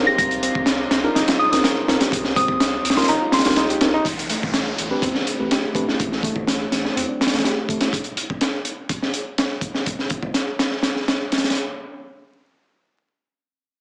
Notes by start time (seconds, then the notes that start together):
Already playing: C3 A#3 C4 D4 D#4 F4 G4 A#4
0.07 G4 A#6
0.18 C2 A#6, kick, closed hi-hat
0.31 closed hi-hat
0.43 C4, closed hi-hat
0.55 C2, kick
0.66 snare, closed hi-hat
0.91 C2, snare, closed hi-hat
1.04 D4 D#4 F4 A#4
1.15 G1 D#4, snare, closed hi-hat
1.28 F4, snare, closed hi-hat
1.39 D#6
1.52 C2 C4 D4 D#4 F4 A#4 D#6, snare, closed hi-hat
1.64 A#4, snare, closed hi-hat
1.88 C2 C4 D4 D#4 F4 A#4, snare, closed hi-hat
2.01 G4, snare, closed hi-hat
2.12 C2, kick, closed hi-hat
2.24 snare
2.36 C4 D#6, kick, closed hi-hat
2.48 C2, kick
2.60 snare, closed hi-hat
2.85 C2, closed hi-hat
2.90 snare, closed hi-hat
2.97 D4 D#4 F4 A#4 C6, snare, closed hi-hat
3.02 snare, closed hi-hat
3.08 G1 D#4 A#5, closed hi-hat
3.22 F4
3.32 C6, snare, closed hi-hat
3.39 snare, closed hi-hat
3.45 C2 D4 D#4 F4 G4 A#4 C6, snare, closed hi-hat
3.51 snare, closed hi-hat
3.56 D#4, snare, closed hi-hat
3.70 G4, closed hi-hat
3.81 C2 C4 D4 D#4 F4 A#4, snare, closed hi-hat
3.94 D#4
4.05 A1, kick, closed hi-hat, downlifter
4.19 closed hi-hat
4.30 A3, closed hi-hat
4.43 A1, kick
4.54 snare, closed hi-hat
4.78 A1, closed hi-hat
4.91 C4 D4 G4 B4
5.02 E2 C4, kick, closed hi-hat
5.15 D4, snare
5.27 closed hi-hat
5.39 A1 A3 C4 D4 G4 B4
5.51 G4, snare, closed hi-hat
5.75 A1 A3 C4 D4 G4 B4, kick, closed hi-hat
5.88 E4, snare
6.00 A1, kick, closed hi-hat
6.12 snare
6.23 A3, kick, closed hi-hat
6.36 A1, kick
6.47 snare, closed hi-hat
6.72 A1, snare, closed hi-hat
6.85 snare
6.96 E2 C4, closed hi-hat
7.09 D4
7.21 snare, closed hi-hat
7.27 snare, closed hi-hat
7.33 A1 A3, snare, closed hi-hat
7.38 snare, closed hi-hat
7.44 G4, snare, closed hi-hat
7.69 A1 A3, kick, closed hi-hat
7.81 E4, snare, closed hi-hat
7.93 kick, closed hi-hat
8.04 closed hi-hat
8.17 closed hi-hat
8.30 kick
8.41 snare, closed hi-hat
8.65 closed hi-hat
8.89 kick, closed hi-hat
9.02 snare
9.14 closed hi-hat
9.38 snare, closed hi-hat
9.61 kick, closed hi-hat
9.74 snare
9.86 kick, closed hi-hat
9.99 snare
10.10 kick, closed hi-hat
10.23 kick
10.34 snare, closed hi-hat
10.59 snare, closed hi-hat
10.71 snare
10.83 snare, closed hi-hat
10.96 snare
11.08 snare, closed hi-hat
11.32 snare, closed hi-hat
11.38 snare, closed hi-hat
11.44 snare, closed hi-hat
11.50 snare, closed hi-hat
11.55 closed hi-hat